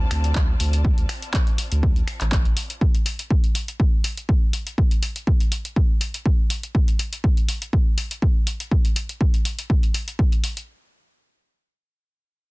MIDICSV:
0, 0, Header, 1, 4, 480
1, 0, Start_track
1, 0, Key_signature, -1, "minor"
1, 0, Tempo, 491803
1, 825, Time_signature, 4, 2, 24, 8
1, 12200, End_track
2, 0, Start_track
2, 0, Title_t, "String section"
2, 0, Program_c, 0, 48
2, 0, Note_on_c, 0, 60, 78
2, 0, Note_on_c, 0, 65, 75
2, 0, Note_on_c, 0, 74, 76
2, 0, Note_on_c, 0, 81, 93
2, 2745, Note_off_c, 0, 60, 0
2, 2745, Note_off_c, 0, 65, 0
2, 2745, Note_off_c, 0, 74, 0
2, 2745, Note_off_c, 0, 81, 0
2, 12200, End_track
3, 0, Start_track
3, 0, Title_t, "Sub bass"
3, 0, Program_c, 1, 38
3, 106, Note_on_c, 1, 38, 92
3, 537, Note_off_c, 1, 38, 0
3, 586, Note_on_c, 1, 38, 99
3, 898, Note_off_c, 1, 38, 0
3, 956, Note_on_c, 1, 38, 92
3, 1035, Note_off_c, 1, 38, 0
3, 1675, Note_on_c, 1, 38, 85
3, 1977, Note_off_c, 1, 38, 0
3, 2155, Note_on_c, 1, 33, 93
3, 2389, Note_off_c, 1, 33, 0
3, 2395, Note_on_c, 1, 33, 98
3, 2475, Note_off_c, 1, 33, 0
3, 12200, End_track
4, 0, Start_track
4, 0, Title_t, "Drums"
4, 106, Note_on_c, 9, 26, 61
4, 106, Note_on_c, 9, 46, 105
4, 204, Note_off_c, 9, 26, 0
4, 204, Note_off_c, 9, 46, 0
4, 235, Note_on_c, 9, 42, 63
4, 333, Note_off_c, 9, 42, 0
4, 345, Note_on_c, 9, 39, 113
4, 346, Note_on_c, 9, 36, 104
4, 443, Note_off_c, 9, 36, 0
4, 443, Note_off_c, 9, 39, 0
4, 585, Note_on_c, 9, 46, 109
4, 683, Note_off_c, 9, 46, 0
4, 715, Note_on_c, 9, 42, 64
4, 812, Note_off_c, 9, 42, 0
4, 826, Note_on_c, 9, 36, 121
4, 923, Note_off_c, 9, 36, 0
4, 955, Note_on_c, 9, 42, 45
4, 1052, Note_off_c, 9, 42, 0
4, 1065, Note_on_c, 9, 26, 78
4, 1065, Note_on_c, 9, 46, 102
4, 1163, Note_off_c, 9, 26, 0
4, 1163, Note_off_c, 9, 46, 0
4, 1195, Note_on_c, 9, 42, 61
4, 1293, Note_off_c, 9, 42, 0
4, 1305, Note_on_c, 9, 39, 117
4, 1306, Note_on_c, 9, 36, 104
4, 1402, Note_off_c, 9, 39, 0
4, 1403, Note_off_c, 9, 36, 0
4, 1435, Note_on_c, 9, 42, 46
4, 1532, Note_off_c, 9, 42, 0
4, 1545, Note_on_c, 9, 46, 107
4, 1643, Note_off_c, 9, 46, 0
4, 1675, Note_on_c, 9, 42, 64
4, 1773, Note_off_c, 9, 42, 0
4, 1786, Note_on_c, 9, 36, 120
4, 1883, Note_off_c, 9, 36, 0
4, 1915, Note_on_c, 9, 42, 34
4, 2013, Note_off_c, 9, 42, 0
4, 2025, Note_on_c, 9, 26, 67
4, 2025, Note_on_c, 9, 46, 103
4, 2123, Note_off_c, 9, 26, 0
4, 2123, Note_off_c, 9, 46, 0
4, 2155, Note_on_c, 9, 39, 36
4, 2155, Note_on_c, 9, 42, 64
4, 2252, Note_off_c, 9, 39, 0
4, 2253, Note_off_c, 9, 42, 0
4, 2265, Note_on_c, 9, 39, 105
4, 2266, Note_on_c, 9, 36, 106
4, 2363, Note_off_c, 9, 36, 0
4, 2363, Note_off_c, 9, 39, 0
4, 2395, Note_on_c, 9, 42, 32
4, 2493, Note_off_c, 9, 42, 0
4, 2505, Note_on_c, 9, 46, 107
4, 2603, Note_off_c, 9, 46, 0
4, 2635, Note_on_c, 9, 42, 59
4, 2733, Note_off_c, 9, 42, 0
4, 2746, Note_on_c, 9, 36, 105
4, 2843, Note_off_c, 9, 36, 0
4, 2875, Note_on_c, 9, 42, 48
4, 2973, Note_off_c, 9, 42, 0
4, 2985, Note_on_c, 9, 46, 101
4, 3083, Note_off_c, 9, 46, 0
4, 3115, Note_on_c, 9, 42, 59
4, 3213, Note_off_c, 9, 42, 0
4, 3226, Note_on_c, 9, 36, 108
4, 3323, Note_off_c, 9, 36, 0
4, 3355, Note_on_c, 9, 42, 44
4, 3453, Note_off_c, 9, 42, 0
4, 3465, Note_on_c, 9, 46, 105
4, 3563, Note_off_c, 9, 46, 0
4, 3595, Note_on_c, 9, 42, 61
4, 3692, Note_off_c, 9, 42, 0
4, 3705, Note_on_c, 9, 36, 112
4, 3803, Note_off_c, 9, 36, 0
4, 3945, Note_on_c, 9, 46, 103
4, 4043, Note_off_c, 9, 46, 0
4, 4075, Note_on_c, 9, 42, 58
4, 4172, Note_off_c, 9, 42, 0
4, 4185, Note_on_c, 9, 36, 105
4, 4283, Note_off_c, 9, 36, 0
4, 4425, Note_on_c, 9, 46, 104
4, 4522, Note_off_c, 9, 46, 0
4, 4554, Note_on_c, 9, 42, 62
4, 4652, Note_off_c, 9, 42, 0
4, 4665, Note_on_c, 9, 36, 105
4, 4763, Note_off_c, 9, 36, 0
4, 4795, Note_on_c, 9, 42, 47
4, 4892, Note_off_c, 9, 42, 0
4, 4905, Note_on_c, 9, 46, 94
4, 5003, Note_off_c, 9, 46, 0
4, 5035, Note_on_c, 9, 42, 63
4, 5132, Note_off_c, 9, 42, 0
4, 5145, Note_on_c, 9, 36, 97
4, 5243, Note_off_c, 9, 36, 0
4, 5275, Note_on_c, 9, 42, 47
4, 5373, Note_off_c, 9, 42, 0
4, 5385, Note_on_c, 9, 46, 98
4, 5483, Note_off_c, 9, 46, 0
4, 5515, Note_on_c, 9, 42, 66
4, 5612, Note_off_c, 9, 42, 0
4, 5625, Note_on_c, 9, 36, 105
4, 5723, Note_off_c, 9, 36, 0
4, 5865, Note_on_c, 9, 46, 93
4, 5963, Note_off_c, 9, 46, 0
4, 5995, Note_on_c, 9, 42, 62
4, 6093, Note_off_c, 9, 42, 0
4, 6105, Note_on_c, 9, 36, 95
4, 6203, Note_off_c, 9, 36, 0
4, 6346, Note_on_c, 9, 46, 98
4, 6443, Note_off_c, 9, 46, 0
4, 6475, Note_on_c, 9, 42, 63
4, 6573, Note_off_c, 9, 42, 0
4, 6585, Note_on_c, 9, 36, 104
4, 6683, Note_off_c, 9, 36, 0
4, 6715, Note_on_c, 9, 42, 52
4, 6813, Note_off_c, 9, 42, 0
4, 6825, Note_on_c, 9, 46, 96
4, 6923, Note_off_c, 9, 46, 0
4, 6955, Note_on_c, 9, 42, 63
4, 7053, Note_off_c, 9, 42, 0
4, 7065, Note_on_c, 9, 36, 99
4, 7163, Note_off_c, 9, 36, 0
4, 7196, Note_on_c, 9, 42, 47
4, 7293, Note_off_c, 9, 42, 0
4, 7306, Note_on_c, 9, 46, 93
4, 7403, Note_off_c, 9, 46, 0
4, 7435, Note_on_c, 9, 42, 67
4, 7533, Note_off_c, 9, 42, 0
4, 7545, Note_on_c, 9, 36, 109
4, 7643, Note_off_c, 9, 36, 0
4, 7786, Note_on_c, 9, 46, 96
4, 7883, Note_off_c, 9, 46, 0
4, 7916, Note_on_c, 9, 42, 67
4, 8013, Note_off_c, 9, 42, 0
4, 8025, Note_on_c, 9, 36, 90
4, 8123, Note_off_c, 9, 36, 0
4, 8266, Note_on_c, 9, 46, 94
4, 8363, Note_off_c, 9, 46, 0
4, 8395, Note_on_c, 9, 42, 63
4, 8493, Note_off_c, 9, 42, 0
4, 8505, Note_on_c, 9, 36, 103
4, 8603, Note_off_c, 9, 36, 0
4, 8636, Note_on_c, 9, 42, 49
4, 8733, Note_off_c, 9, 42, 0
4, 8746, Note_on_c, 9, 46, 98
4, 8844, Note_off_c, 9, 46, 0
4, 8875, Note_on_c, 9, 42, 63
4, 8973, Note_off_c, 9, 42, 0
4, 8986, Note_on_c, 9, 36, 94
4, 9083, Note_off_c, 9, 36, 0
4, 9115, Note_on_c, 9, 42, 47
4, 9213, Note_off_c, 9, 42, 0
4, 9226, Note_on_c, 9, 46, 97
4, 9323, Note_off_c, 9, 46, 0
4, 9356, Note_on_c, 9, 42, 70
4, 9453, Note_off_c, 9, 42, 0
4, 9466, Note_on_c, 9, 36, 108
4, 9563, Note_off_c, 9, 36, 0
4, 9596, Note_on_c, 9, 42, 38
4, 9693, Note_off_c, 9, 42, 0
4, 9705, Note_on_c, 9, 46, 95
4, 9803, Note_off_c, 9, 46, 0
4, 9835, Note_on_c, 9, 42, 65
4, 9933, Note_off_c, 9, 42, 0
4, 9946, Note_on_c, 9, 36, 92
4, 10043, Note_off_c, 9, 36, 0
4, 10075, Note_on_c, 9, 42, 36
4, 10173, Note_off_c, 9, 42, 0
4, 10186, Note_on_c, 9, 46, 96
4, 10284, Note_off_c, 9, 46, 0
4, 10316, Note_on_c, 9, 42, 66
4, 10414, Note_off_c, 9, 42, 0
4, 12200, End_track
0, 0, End_of_file